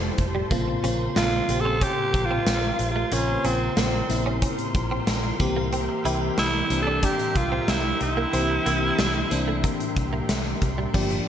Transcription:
Already playing: fm electric piano C3 G3 A3 E4 G4, string machine A4 C5 A5 C6
0.02 muted clean electric guitar stroke
0.18 fingered electric bass F1, kick, closed hi-hat
0.35 clean electric guitar G3
0.50 fingered electric bass A#1, fm electric piano C#3 A#3 C4 F4, clean electric guitar A#3, string machine A#4, kick, closed hi-hat
0.68 muted clean electric guitar stroke
0.83 fingered electric bass A#1, fm electric piano C#3 A#3 C4 F4, clean electric guitar C#4, closed hi-hat
1.16 fingered electric bass A#1, clean electric guitar A#3, alto saxophone F4, snare, closed hi-hat
1.33 muted clean electric guitar stroke
1.48 fingered electric bass A#1, fm electric piano C#3 A#3 C4 G4, closed hi-hat
1.61 alto saxophone A4
1.65 clean electric guitar C#4
1.81 clean electric guitar C#4, alto saxophone G4, kick, closed hi-hat
2.14 fingered electric bass A#1, muted clean electric guitar stroke, kick, closed hi-hat
2.26 alto saxophone F4
2.31 clean electric guitar C4
2.46 fingered electric bass A#1, clean electric guitar C4, snare, closed hi-hat
2.79 fingered electric bass A#1, muted clean electric guitar stroke, closed hi-hat
2.91 alto saxophone F4
2.96 clean electric guitar A3
3.11 fingered electric bass A#1, fm electric piano C#3 A#3 C4 F4, clean electric guitar A#3, alto saxophone C#4, closed hi-hat
3.28 muted clean electric guitar stroke
3.44 fingered electric bass A#1, fm electric piano C#3 A#3 C4 F4, alto saxophone C4, clean electric guitar C#4, closed hi-hat
3.77 fingered electric bass A#1, clean electric guitar A#3, alto saxophone C4, snare, closed hi-hat
3.93 muted clean electric guitar stroke
4.09 fingered electric bass A#1, fm electric piano C#3 A#3 C4 E4, closed hi-hat
4.26 clean electric guitar C#4
4.42 clean electric guitar C#4, kick, closed hi-hat
4.59 closed hi-hat
4.75 fingered electric bass A#1, muted clean electric guitar stroke, kick, closed hi-hat
4.91 clean electric guitar C4
5.07 fingered electric bass A#1, clean electric guitar C4, snare, closed hi-hat
5.24 muted clean electric guitar stroke
5.39 fingered electric bass C2, fm electric piano E3 A#3 C4 G4, string machine E5 G5, kick, closed hi-hat
5.57 clean electric guitar A#3
5.73 clean electric guitar C4, closed hi-hat
5.89 muted clean electric guitar stroke
6.04 fingered electric bass C2, fm electric piano E3 A#3 C4 G4, clean electric guitar E4, closed hi-hat
6.37 fingered electric bass C2, clean electric guitar C4, alto saxophone E4, snare, closed hi-hat
6.54 muted clean electric guitar stroke
6.70 fingered electric bass C2, fm electric piano E3 A#3 C4 D4, closed hi-hat
6.82 alto saxophone A4
6.87 clean electric guitar D4
7.03 clean electric guitar D4, alto saxophone G4, kick, closed hi-hat
7.19 closed hi-hat
7.35 fingered electric bass C2, alto saxophone F4, muted clean electric guitar stroke, kick, closed hi-hat
7.52 clean electric guitar C4
7.68 fingered electric bass C2, clean electric guitar C4, alto saxophone E4, snare, closed hi-hat
8.01 fingered electric bass C2, alto saxophone E4, muted clean electric guitar stroke, closed hi-hat
8.17 clean electric guitar A#3
8.33 fingered electric bass C2, fm electric piano E3 A#3 C4 G4, clean electric guitar C4, closed hi-hat
8.50 muted clean electric guitar stroke
8.65 fingered electric bass C2, fm electric piano E3 A#3 C4 G4, clean electric guitar A#3, closed hi-hat
8.99 fingered electric bass C2, clean electric guitar G3, snare, closed hi-hat
9.15 muted clean electric guitar stroke
9.31 fingered electric bass C2, fm electric piano E3 A#3 C4 D4, closed hi-hat
9.48 clean electric guitar A3
9.64 clean electric guitar A#3, kick, closed hi-hat
9.80 closed hi-hat
9.96 fingered electric bass C2, muted clean electric guitar stroke, kick, closed hi-hat
10.13 clean electric guitar A#3
10.29 fingered electric bass C2, clean electric guitar A3, snare, closed hi-hat
10.45 muted clean electric guitar stroke
10.62 fingered electric bass C2, kick, closed hi-hat
10.78 clean electric guitar G3
10.94 fingered electric bass G1, fm electric piano F3 A#3 D4 G4, clean electric guitar G3, string machine G4 D5 F5 G5, kick, crash
11.11 muted clean electric guitar stroke, closed hi-hat

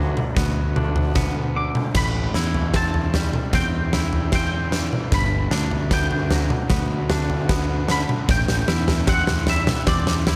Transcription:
Already playing: fingered electric bass D2, clean electric guitar G2 F#3 B3 D4 D5
0.17 mid tom
0.37 fingered electric bass D2, clean electric guitar B3, kick, snare, floor tom
0.76 clean electric guitar D4, floor tom, mid tom
0.96 floor tom
1.15 clean electric guitar B3, kick, snare, mid tom
1.56 clean electric guitar D3 D6
1.75 mid tom
1.95 fingered electric bass A1, clean electric guitar A2 B5, kick, snare, floor tom, crash
2.34 fingered electric bass E2, clean electric guitar E4, snare
2.54 floor tom
2.74 clean electric guitar C4 A5, kick, snare
2.94 floor tom
3.14 clean electric guitar G3, snare, floor tom
3.33 mid tom
3.53 fingered electric bass E2, clean electric guitar C4 G5, kick, snare, floor tom
3.93 clean electric guitar E4, snare, floor tom
4.13 floor tom
4.32 clean electric guitar C4 G5, kick, snare
4.72 clean electric guitar E3, snare
4.93 mid tom
5.12 fingered electric bass G1, clean electric guitar G2 B5, kick, snare, floor tom
5.51 fingered electric bass D2, clean electric guitar D4, snare
5.71 floor tom
5.91 clean electric guitar B3 G5, kick, snare
6.11 floor tom
6.31 clean electric guitar F#3, snare, floor tom
6.50 mid tom
6.70 fingered electric bass D2, clean electric guitar B3, kick, snare, floor tom
7.10 clean electric guitar D4, snare, floor tom
7.30 floor tom
7.49 clean electric guitar B3, kick, snare
7.88 clean electric guitar D3 B5, snare
8.09 mid tom
8.28 fingered electric bass A1, clean electric guitar A2 G5, kick, snare, floor tom
8.48 snare
8.68 fingered electric bass E2, clean electric guitar E4, snare
8.88 snare, floor tom
9.07 clean electric guitar C4 F#5, kick, snare
9.27 snare, floor tom
9.47 clean electric guitar G3 E5, snare, floor tom
9.67 snare, mid tom
9.87 fingered electric bass E2, clean electric guitar C4 D5, kick, snare, floor tom
10.07 snare
10.27 clean electric guitar E4, snare, floor tom

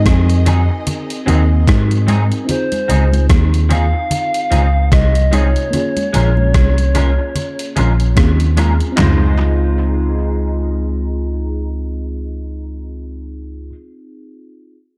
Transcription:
Already playing: fm electric piano C4 D#4 F#4 A#4, string section C4 G#4 D#5, soft synth lead D#5
0.06 tine electric piano F2, kick, cross-stick, closed hi-hat, high conga
0.30 closed hi-hat
0.46 clean electric guitar F#3 C4 D#4 G#4, closed hi-hat, low conga
0.69 muted clean electric guitar stroke
0.87 closed hi-hat, low conga
1.10 closed hi-hat
1.26 tine electric piano D#2, clean electric guitar F#3 C4 D#4 G#4, fm electric piano C4 D#4 F#4 A#4, closed hi-hat, low conga
1.68 tine electric piano G#2, kick, cross-stick, closed hi-hat
1.91 closed hi-hat
2.07 clean electric guitar F#3 C4 D#4 G#4, closed hi-hat, high conga
2.32 closed hi-hat
2.45 fm electric piano C4 D#4 F4, closed hi-hat
2.49 fm electric piano G#4, soft synth lead C5, low conga
2.72 closed hi-hat, high conga
2.88 tine electric piano C#2, clean electric guitar F3 C4 D#4 G#4, closed hi-hat, low conga
3.12 closed hi-hat, high conga
3.30 tine electric piano D#2, kick, cross-stick, closed hi-hat, high conga
3.54 closed hi-hat
3.69 clean electric guitar F3 C4 D#4 G#4, soft synth lead F5, closed hi-hat, low conga
3.93 muted clean electric guitar stroke
4.11 closed hi-hat, low conga
4.34 closed hi-hat
4.51 tine electric piano C#2, clean electric guitar F3 C4 D#4 G#4, closed hi-hat, low conga
4.92 tine electric piano C2, soft synth lead D#5, kick, cross-stick, closed hi-hat
5.15 closed hi-hat
5.31 fm electric piano C3 D#4 F4 G#4, clean electric guitar F3 C4 D#4 G#4, soft synth lead C#5, closed hi-hat, high conga
5.56 closed hi-hat
5.71 fm electric piano A#3 C#4 F4, closed hi-hat, low conga
5.77 fm electric piano G#4
5.97 closed hi-hat, high conga
6.13 tine electric piano A#1, clean electric guitar G#3 C#4 F4 A#4, closed hi-hat, low conga
6.37 high conga
6.54 tine electric piano C2, kick, cross-stick, closed hi-hat, high conga
6.78 closed hi-hat
6.95 clean electric guitar G#3 C#4 F4 A#4, closed hi-hat, low conga
7.18 muted clean electric guitar stroke
7.35 closed hi-hat, low conga
7.59 closed hi-hat
7.76 tine electric piano A#1, clean electric guitar G#3 C#4 F4 A#4, closed hi-hat, low conga
8.00 closed hi-hat
8.16 tine electric piano D#2, fm electric piano C4 C#4 F4 G#4, kick, cross-stick, closed hi-hat
8.40 closed hi-hat
8.57 clean electric guitar G#3 C#4 F4 A#4, closed hi-hat, high conga
8.80 closed hi-hat
8.92 fm electric piano C4 D#4
8.96 tine electric piano C#2, clean electric guitar G#3 D#4 F4, fm electric piano F4, snare, clap, floor tom, low conga
9.02 fm electric piano G#4, clean electric guitar C5

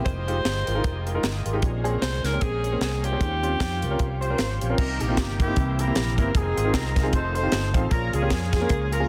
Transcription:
Already playing: string section G4
0.05 fingered electric bass F1, tonewheel organ F3 G#3 D#4 G4, string section G#3 D#4 F4, alto saxophone C5, kick, closed hi-hat
0.27 grand piano G#3 D#4 F4 G4, closed hi-hat
0.45 fingered electric bass G1, snare, closed hi-hat
0.66 fingered electric bass G#1, grand piano F4 A#4, closed hi-hat
0.75 grand piano G#3 D#4 F4 A#4
0.84 fingered electric bass F1, kick, closed hi-hat
1.06 grand piano F4 A#4, closed hi-hat
1.15 grand piano G#3 D#4 F4 A#4
1.23 fingered electric bass G1, snare, closed hi-hat
1.45 fingered electric bass G#1, grand piano F4 A#4, closed hi-hat
1.53 grand piano G#3 D#4 F4 G4
1.62 fingered electric bass A#1, grand piano A#2, string section G#3 A#3 G#4 C5, tonewheel organ G#3 C4 C#4 A#4, kick, closed hi-hat
1.84 grand piano A#3 C4 C#4 G#4, closed hi-hat
2.02 fingered electric bass C2, alto saxophone C5, snare, closed hi-hat
2.24 fingered electric bass C#2, grand piano C#4 D#4, alto saxophone A#4, snare, closed hi-hat
2.33 grand piano A#3 C4 C#4 G4
2.41 fingered electric bass A#1, alto saxophone G#4, kick, closed hi-hat
2.64 grand piano C#4 G#4, closed hi-hat
2.72 grand piano A#3 C4 C#4 G#4
2.80 fingered electric bass C2, alto saxophone G#4, snare, closed hi-hat
3.04 grand piano C#4 F4, alto saxophone G4, closed hi-hat
3.13 grand piano A#3 C4 C#4 G#4
3.20 fingered electric bass D#2, grand piano D#3, tonewheel organ F3 C4 C#4 G4, string section G3 F4, kick, closed hi-hat
3.43 grand piano C4 C#4 F4 G4, closed hi-hat
3.60 fingered electric bass F2, kick, snare, closed hi-hat
3.82 fingered electric bass C#2, grand piano F4 A#4, closed hi-hat
3.90 grand piano C4 C#4 F4 A#4
3.99 fingered electric bass C2, kick, closed hi-hat
4.21 grand piano F4 G4, horn section F4 G4 C5, closed hi-hat
4.30 grand piano C4 C#4 F4 A#4
4.38 fingered electric bass G#1, snare, closed hi-hat
4.61 fingered electric bass A#1, grand piano F4 G4, closed hi-hat
4.69 grand piano C4 C#4 F4 A#4
4.77 fingered electric bass C2, grand piano C3, tonewheel organ D3 A#3 C4 G4, horn section D#4 G4 A#4, kick, crash
4.83 tonewheel organ D#3
4.99 fingered electric bass A#1, horn section A#3 D#4 G4, grand piano D#4 G4, closed hi-hat
5.08 grand piano A#3 C4 D#4 F4
5.17 fingered electric bass G1, kick, snare, closed hi-hat
5.39 horn section A#3 E4 G4, grand piano D#4 A#4, kick, closed hi-hat
5.47 grand piano A#3 C4 D#4 G4
5.56 fingered electric bass C2, grand piano C3, tonewheel organ E3 A#3 C4 G4, kick, closed hi-hat
5.78 grand piano E4 G4, horn section E4 G4 A#4, closed hi-hat
5.87 grand piano A#3 C4 E4 G4
5.95 fingered electric bass A#1, snare, closed hi-hat
6.18 fingered electric bass G1, grand piano A#3 C4 E4 A#4, horn section A#4, kick, closed hi-hat
6.35 fingered electric bass F1, tonewheel organ D#3 G#3 C4 F4, horn section C4 D#4 G#4, kick, closed hi-hat
6.56 fingered electric bass G#1, grand piano F4 G#4, closed hi-hat
6.64 grand piano C4 D#4 F4 A#4
6.74 fingered electric bass C2, horn section D#4 A#4, kick, snare, closed hi-hat
6.95 grand piano F4 A#4, kick, snare, closed hi-hat
7.03 grand piano C4 D#4 F4 G#4
7.13 fingered electric bass F1, tonewheel organ D#3 A3 C4 F4, horn section D#4 A4 C5, kick, closed hi-hat
7.34 horn section D#4 A4 C5, grand piano F4 A4, closed hi-hat
7.43 grand piano C4 D#4 F4 G4
7.52 fingered electric bass G1, snare, closed hi-hat
7.74 fingered electric bass A1, grand piano C4 D#4 F4 C5, kick, closed hi-hat
7.90 fingered electric bass A#1, grand piano A#2, tonewheel organ F3 A#3 C#4 G#4, horn section C#4 F4 A#4, kick, closed hi-hat
8.13 fingered electric bass C#2, horn section C#4 F4 G#4, grand piano F4 G#4, closed hi-hat
8.22 grand piano A#3 C#4 F4 G4
8.30 fingered electric bass F2, kick, snare, closed hi-hat
8.52 horn section C#4 F4 G#4, grand piano F4 G#4, kick, snare, closed hi-hat
8.61 grand piano A#3 C#4 F4 A#4
8.69 fingered electric bass C#2, kick, closed hi-hat
8.91 horn section C#4 F4 A#4, grand piano F4 G#4, closed hi-hat
9.00 grand piano A#3 C#4 F4 G#4

